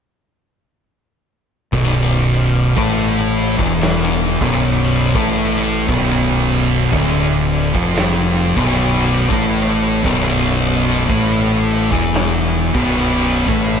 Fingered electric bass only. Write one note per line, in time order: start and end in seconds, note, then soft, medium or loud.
1.73 2.73 B0 loud
2.78 3.55 A1 medium
3.59 4.37 E1 loud
4.41 5.11 B0 loud
5.15 5.85 A1 loud
5.89 6.89 B0 medium
6.92 7.71 D1 loud
7.75 8.54 F1 loud
8.57 9.27 B0 medium
9.31 10.01 A1 medium
10.05 11.06 B0 loud
11.10 11.88 A1 loud
11.92 12.71 E1 loud
12.75 13.45 B0 medium
13.49 13.80 A1 loud